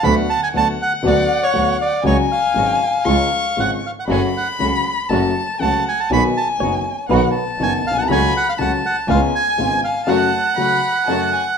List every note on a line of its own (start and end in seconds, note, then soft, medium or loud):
0.03 0.25 D2 medium
0.03 0.25 D3 medium
0.03 0.24 F#3 medium
0.03 0.25 B3 medium
0.03 0.25 D4 medium
0.03 0.25 F#4 medium
0.03 0.53 F#5 medium
0.03 0.15 B5 medium
0.30 0.41 A5 medium
0.43 0.48 G#5 medium
0.54 0.75 D2 medium
0.54 0.75 D2 soft
0.54 0.75 D3 soft
0.54 0.75 F#3 soft
0.54 0.75 B3 soft
0.54 0.75 D4 soft
0.54 0.75 F#4 soft
0.54 0.75 F#4 medium
0.54 2.00 F#5 medium
0.54 0.68 A5 medium
0.82 0.93 F#5 medium
1.03 1.25 D2 medium
1.03 1.25 D3 medium
1.03 1.25 F#3 medium
1.03 1.25 B3 medium
1.03 1.25 D4 medium
1.03 1.25 F#4 medium
1.03 1.26 F#4 medium
1.07 1.44 D5 medium
1.43 1.77 C#5 medium
1.53 1.75 D2 soft
1.53 1.75 D2 medium
1.53 1.75 D3 soft
1.53 1.75 F#3 soft
1.53 1.75 B3 soft
1.53 1.75 D4 soft
1.53 1.75 F#4 soft
1.81 2.04 D5 medium
2.03 2.25 C#2 medium
2.03 2.26 C#2 medium
2.03 2.25 C#3 medium
2.03 2.25 F#3 medium
2.03 2.25 G#3 medium
2.03 2.26 G#3 medium
2.03 2.26 C#4 medium
2.03 2.25 F#4 medium
2.03 2.26 F#4 medium
2.03 2.17 C#5 medium
2.03 3.07 G#5 medium
2.32 3.62 F5 medium
2.54 2.76 G#1 soft
2.54 2.76 G#2 soft
2.54 2.76 C#3 soft
2.54 2.76 F#3 soft
2.54 2.76 G#3 soft
2.54 2.77 G#3 soft
2.54 2.77 C#4 soft
2.54 2.76 F#4 soft
2.54 2.77 F#4 soft
3.05 3.27 C#2 medium
3.05 3.27 C#3 medium
3.05 3.27 F3 soft
3.05 3.27 G#3 medium
3.05 3.28 G#3 medium
3.05 3.28 C#4 medium
3.05 3.27 F4 medium
3.05 3.28 F4 medium
3.05 3.83 C#6 medium
3.57 3.79 G#1 soft
3.57 3.79 G#2 soft
3.57 3.79 C#3 soft
3.57 3.79 F3 soft
3.57 3.79 G#3 soft
3.57 3.79 C#4 soft
3.57 3.79 F4 soft
3.57 3.71 F#5 medium
3.86 3.91 F5 medium
4.00 4.04 F#5 medium
4.07 4.30 F#1 medium
4.07 4.30 F#2 medium
4.07 4.30 C#3 medium
4.07 4.30 F#3 medium
4.07 4.30 A3 medium
4.07 4.30 C#4 medium
4.07 4.30 F#4 medium
4.07 5.11 B5 medium
4.12 4.22 G#5 medium
4.37 4.48 F#5 medium
4.59 4.81 C#2 medium
4.59 4.81 C#2 soft
4.59 4.81 C#3 soft
4.59 4.81 F#3 soft
4.59 4.81 A3 soft
4.59 4.81 C#4 soft
4.59 4.81 F#4 soft
5.09 5.31 F#1 medium
5.09 5.32 F#2 medium
5.09 5.32 C#3 medium
5.09 5.32 F#3 medium
5.09 5.32 A3 medium
5.09 5.32 C#4 medium
5.09 5.32 F#4 medium
5.09 5.61 A5 medium
5.59 5.81 C#2 soft
5.59 5.82 C#2 medium
5.59 5.81 C#3 soft
5.59 5.81 F#3 soft
5.59 5.81 A3 soft
5.59 5.82 A3 soft
5.59 5.82 C#4 soft
5.59 5.82 F#4 soft
5.59 6.11 F#5 medium
5.59 5.85 A5 medium
5.89 6.00 G#5 medium
6.00 6.11 A5 medium
6.09 6.31 B1 medium
6.09 6.32 B1 medium
6.09 6.31 B2 medium
6.09 6.32 D#3 medium
6.09 6.32 F#3 medium
6.09 6.32 B3 medium
6.09 6.32 D#4 medium
6.09 6.32 F#4 medium
6.09 7.09 G#5 medium
6.09 6.24 B5 medium
6.37 6.48 A5 medium
6.60 6.81 F#1 soft
6.60 6.81 F#2 soft
6.60 6.81 D#3 soft
6.60 6.81 F#3 soft
6.60 6.81 B3 soft
6.60 6.82 B3 soft
6.60 6.82 D#4 soft
6.60 6.81 F#4 soft
6.60 6.82 F#4 soft
6.60 7.11 C#5 medium
7.09 7.31 B1 medium
7.09 7.30 B2 medium
7.09 7.30 D#3 medium
7.09 7.31 F#3 medium
7.09 7.31 B3 medium
7.09 7.31 D#4 medium
7.09 7.31 F#4 medium
7.09 7.45 B4 medium
7.09 7.33 F#5 medium
7.34 8.10 A5 medium
7.59 7.80 F#1 medium
7.59 7.81 F#1 soft
7.59 7.81 F#2 soft
7.59 7.80 D#3 soft
7.59 7.80 F#3 soft
7.59 7.80 B3 soft
7.59 7.81 B3 soft
7.59 7.81 D#4 soft
7.59 7.81 F#4 soft
7.63 7.73 G#5 medium
7.84 8.08 B1 medium
7.84 7.97 F5 medium
7.91 7.97 A#1 soft
7.97 8.03 B1 medium
7.97 8.04 F#5 medium
8.03 8.09 C2 medium
8.08 8.30 C#2 medium
8.08 8.30 C#3 medium
8.08 8.30 F#3 medium
8.08 8.30 A3 medium
8.08 8.30 C#4 medium
8.08 8.30 F#4 medium
8.08 8.34 G#5 medium
8.08 8.60 B5 medium
8.37 8.48 F#5 medium
8.49 8.54 F5 medium
8.58 8.80 C#2 medium
8.58 8.80 C#2 soft
8.58 8.80 C#3 soft
8.58 8.80 F#3 soft
8.58 8.80 A3 soft
8.58 8.80 C#4 soft
8.58 8.80 F#4 soft
8.58 8.80 F#4 medium
8.58 8.72 F#5 medium
8.58 9.09 A5 medium
8.86 8.97 F#5 medium
9.08 9.29 C#2 medium
9.08 9.29 C#3 medium
9.08 9.29 G#3 medium
9.08 9.29 B3 medium
9.08 9.30 B3 medium
9.08 9.29 C#4 medium
9.08 9.29 F4 medium
9.08 9.21 F5 medium
9.08 10.06 G#5 medium
9.35 9.81 G#5 medium
9.57 9.79 G#1 medium
9.57 9.79 G#2 soft
9.57 9.79 C#3 soft
9.57 9.79 G#3 soft
9.57 9.79 B3 soft
9.57 9.79 C#4 soft
9.57 9.79 F4 soft
9.84 10.09 F5 medium
10.06 10.28 F#2 medium
10.06 10.28 C#3 medium
10.06 10.28 F#3 medium
10.06 10.28 A3 medium
10.06 10.28 C#4 medium
10.06 10.28 F#4 medium
10.06 10.29 F#4 medium
10.06 11.58 F#5 medium
10.06 10.54 A5 medium
10.56 10.79 C#2 soft
10.56 10.79 C#3 soft
10.56 10.78 F#3 soft
10.56 10.78 A3 soft
10.56 10.79 A3 soft
10.56 10.78 C#4 soft
10.56 10.79 F#4 soft
10.56 11.05 B5 medium
11.07 11.30 F#2 medium
11.07 11.30 C#3 medium
11.07 11.30 F#3 medium
11.07 11.30 A3 medium
11.07 11.30 C#4 medium
11.07 11.30 F#4 medium
11.07 11.32 A5 medium
11.33 11.45 G#5 medium